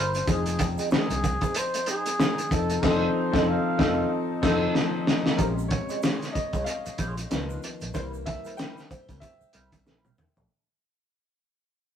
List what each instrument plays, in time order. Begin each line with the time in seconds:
Already playing: fingered electric bass G1, grand piano G3 C4 E4 A#4, clean electric guitar E4 A#4 C5, flugelhorn C5
0.14 muted clean electric guitar stroke, closed hi-hat, shaker
0.26 fingered electric bass F1, grand piano F3 C4 D#4 G#4, clean electric guitar D#4 G#4 C5, kick, closed hi-hat, shaker
0.30 flugelhorn G#4
0.46 muted clean electric guitar stroke, closed hi-hat, shaker
0.59 celesta G5, kick, closed hi-hat, shaker
0.78 clean electric guitar D#4 G#4 D#5, closed hi-hat, shaker
0.91 clean electric guitar D#4 G#4 C5, flugelhorn G#4, muted fingered electric bass stroke, snare, shaker
1.10 fingered electric bass C2, closed hi-hat, shaker
1.23 muted clean electric guitar stroke, kick, closed hi-hat, shaker
1.41 clean electric guitar D#4 G#4 C5, kick, closed hi-hat, shaker
1.54 flugelhorn C5, closed hi-hat, shaker
1.74 muted clean electric guitar stroke, closed hi-hat, shaker
1.86 clean electric guitar D#4 G#4 C5, flugelhorn G#4, closed hi-hat, shaker
2.06 muted clean electric guitar stroke, closed hi-hat, shaker
2.19 clean electric guitar D#4 G#4 C5, snare, shaker
2.38 closed hi-hat, shaker
2.51 fingered electric bass F1, grand piano F3 C4 D#4 A4, flugelhorn A4, muted clean electric guitar stroke, kick, closed hi-hat, shaker
2.69 muted clean electric guitar stroke, closed hi-hat, shaker
2.82 fingered electric bass F1, grand piano F3 C4 D#4 A4, clean electric guitar D#4 A4 C5, flugelhorn C5, kick, snare, crash
3.32 fingered electric bass F1, grand piano F3 C4 D#4 A4, clean electric guitar D#4 A4 D#5, kick, snare
3.49 flugelhorn F5
3.77 fingered electric bass F1, grand piano F3 C4 D#4 A4, clean electric guitar D#4 A4 C5, kick, snare
4.42 fingered electric bass F1, grand piano F3 C4 D#4 A4, clean electric guitar D#4 A4 C5, kick, snare, crash
4.75 snare
5.07 snare
5.26 snare
5.37 fingered electric bass A#1, grand piano C3 C#3 G#3 A#4, clean electric guitar F4 G#4 C#5, celesta G#5, kick, closed hi-hat, shaker
5.57 muted clean electric guitar stroke, shaker
5.68 grand piano C#5, muted clean electric guitar stroke, kick, closed hi-hat
5.89 clean electric guitar F4 G#4 D#5, closed hi-hat, shaker
6.02 clean electric guitar F4 G#4 C#5, snare, closed hi-hat, shaker
6.22 snare, closed hi-hat, shaker
6.32 grand piano D#5, celesta D#5, muted clean electric guitar stroke, muted fingered electric bass stroke, kick, closed hi-hat, shaker
6.53 fingered electric bass C2, clean electric guitar F4 G#4 C#5, kick, closed hi-hat, shaker
6.64 grand piano F5, closed hi-hat, shaker
6.85 muted clean electric guitar stroke, muted fingered electric bass stroke, closed hi-hat, shaker
6.98 fingered electric bass A#1, clean electric guitar F4 G#4 C#5, kick, closed hi-hat, shaker
7.17 muted clean electric guitar stroke, closed hi-hat, shaker
7.30 fingered electric bass C#2, grand piano D#3 F3 B3, clean electric guitar D#4 F4 B4, snare, closed hi-hat, shaker
7.50 shaker
7.63 closed hi-hat, shaker
7.80 fingered electric bass A#1, muted clean electric guitar stroke, closed hi-hat, shaker
7.93 fingered electric bass C2, grand piano E3 G3 A#3 C5, clean electric guitar E4 A#4 C5, kick, closed hi-hat, shaker
8.13 muted clean electric guitar stroke, shaker
8.26 grand piano E5, muted clean electric guitar stroke, kick, closed hi-hat
8.44 clean electric guitar E4 A#4 C5, closed hi-hat, shaker
8.57 clean electric guitar E4 A#4 C5, grand piano G5, snare, closed hi-hat, shaker
8.77 snare, shaker
8.90 celesta C5, muted clean electric guitar stroke, muted fingered electric bass stroke, kick, closed hi-hat, shaker
9.08 fingered electric bass C#2, clean electric guitar E4 A#4 C5, kick, closed hi-hat, shaker
9.20 grand piano E5, kick, closed hi-hat, shaker
9.41 muted clean electric guitar stroke, muted fingered electric bass stroke, shaker
9.53 fingered electric bass C2, clean electric guitar E4 A#4 C5, closed hi-hat, shaker
9.72 muted clean electric guitar stroke, kick, closed hi-hat, shaker
9.86 fingered electric bass A#1, clean electric guitar D#4 A4 B4, snare, shaker
9.98 clean electric guitar E4 A#4 C5
10.05 high tom, shaker
10.18 mid tom, shaker
10.36 fingered electric bass A#1, muted clean electric guitar stroke, floor tom, shaker